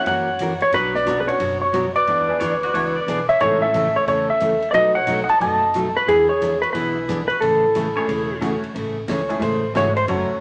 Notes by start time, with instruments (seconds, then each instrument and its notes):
0.06 upright bass F#2, steel-string acoustic guitar E3 A#3 C#4 F#4 A#4, clarinet C#5, electric slide guitar F#5, ride
0.39 steel-string acoustic guitar E3 A#3 C#4 F#4 A#4, hi-hat pedal, ride
0.60 clarinet F#4, electric slide guitar C#5, ride
0.72 upright bass B1, steel-string acoustic guitar B2 F#3 B3 D4 F#4 C#5, clarinet F#4, electric slide guitar B4, ride
0.94 clarinet B4, electric slide guitar D5, snare
1.05 steel-string acoustic guitar B2 F#3 B3 D4 F#4 C#5, hi-hat pedal, ride
1.19 clarinet G#4, electric slide guitar B4
1.26 honky-tonk piano B3 C#4 D4 F#4, clarinet F#4, electric slide guitar C#5, ride
1.39 upright bass F#1, steel-string acoustic guitar B2 F#3 B3 D4 F#4 C#5, ride
1.61 clarinet F#4, electric slide guitar C#5
1.73 steel-string acoustic guitar B2 F#3 B3 D4 F#4 C#5, hi-hat pedal, ride
1.95 clarinet B4, electric slide guitar D5, ride
2.06 upright bass E2, steel-string acoustic guitar E3 B3 D4 G#4, ride
2.28 honky-tonk piano B3 D4 E4 G#4
2.40 upright bass D2, steel-string acoustic guitar E3 B3 D4 G#4, pedal steel guitar C#5, hi-hat pedal, ride
2.63 pedal steel guitar F#4, ride
2.73 upright bass C#2, steel-string acoustic guitar E3 B3 D4 G#4, honky-tonk piano B3 D4 E4 F#4, pedal steel guitar C#5, ride
2.96 pedal steel guitar D5
3.07 upright bass B1, steel-string acoustic guitar E3 B3 D4 G#4, hi-hat pedal, ride
3.29 clarinet C#5, electric slide guitar E5, ride
3.40 upright bass A1, steel-string acoustic guitar C#3 E3 A3 C#4 A4, honky-tonk piano G#3 C4 D#4 G#4, clarinet A4, electric slide guitar C#5, ride
3.61 honky-tonk piano A3 C#4 E4 A4, clarinet A4, electric slide guitar E5
3.74 steel-string acoustic guitar C#3 E3 A3 C#4 A4, hi-hat pedal, ride
3.96 clarinet A4, electric slide guitar C#5
4.07 upright bass E2, steel-string acoustic guitar C#3 E3 A3 C#4 A4, clarinet A4, electric slide guitar C#5, ride
4.30 clarinet A4, electric slide guitar E5
4.40 steel-string acoustic guitar C#3 E3 A3 C#4 A4, hi-hat pedal, ride
4.62 ride
4.71 upright bass B1, steel-string acoustic guitar B2 F#3 A3 D#4 F#4, honky-tonk piano B3 D#4 F#4, clarinet B4, electric slide guitar D5 D#5, ride
4.75 honky-tonk piano A4
4.95 clarinet C#5, electric slide guitar F#5
5.06 steel-string acoustic guitar B2 F#3 A3 D#4 F#4, hi-hat pedal, ride
5.23 clarinet D#5, electric slide guitar F#5
5.29 clarinet D#5, electric slide guitar A5, ride
5.40 upright bass F#1, steel-string acoustic guitar B2 F#3 A3 D#4 F#4, clarinet D#5, electric slide guitar A5, ride
5.74 steel-string acoustic guitar B2 F#3 A3 D#4 F#4, hi-hat pedal, ride
5.95 clarinet F#4, electric slide guitar B4
6.07 upright bass E2, steel-string acoustic guitar E3 B3 D4 G#4, clarinet E4, electric slide guitar G#4, ride
6.29 clarinet G#4, electric slide guitar C#5
6.41 steel-string acoustic guitar E3 B3 D4 G#4, hi-hat pedal, ride
6.62 clarinet F#4, electric slide guitar B4, ride
6.73 upright bass B1, steel-string acoustic guitar E3 B3 D4 G#4, clarinet E4, electric slide guitar B4, ride
7.08 steel-string acoustic guitar E3 B3 D4 G#4, hi-hat pedal, ride
7.28 clarinet F#4, electric slide guitar B4, ride
7.41 upright bass A1, steel-string acoustic guitar C#3 E3 A3 C#4 G#4, clarinet E4, electric slide guitar A4, ride
7.75 steel-string acoustic guitar C#3 E3 A3 C#4 G#4, hi-hat pedal, ride
7.96 honky-tonk piano A3 C#4 E4 G#4, pedal steel guitar C#5
8.07 upright bass E1, steel-string acoustic guitar C#3 E3 A3 C#4 G#4, pedal steel guitar C#5, ride
8.40 steel-string acoustic guitar C#3 E3 A3 C#4 G#4, honky-tonk piano A3 C#4 E4 F#4, hi-hat pedal, ride
8.63 ride
8.74 upright bass A1, steel-string acoustic guitar C#3 E3 A3 C#4 G#4, ride
9.08 upright bass C#2, steel-string acoustic guitar C#3 E3 A3 C#4 G#4, electric slide guitar C#5, snare, hi-hat pedal, ride
9.29 honky-tonk piano G#3 A3 C#4 E4 G#4, ride
9.39 upright bass A1, steel-string acoustic guitar C#3 E3 A3 C#4 G#4, electric slide guitar C5, ride
9.74 upright bass G#1, steel-string acoustic guitar C#3 E3 A3 C#4 G#4, honky-tonk piano G#3 A3 C#4 E4 F#4, electric slide guitar C#5, snare, hi-hat pedal, ride
9.96 electric slide guitar C5, ride
10.07 upright bass F#1, steel-string acoustic guitar C#3 F#3 A3 C#4 F#4, honky-tonk piano F#3 A3 C#4 F#4 A4, electric slide guitar C#5, ride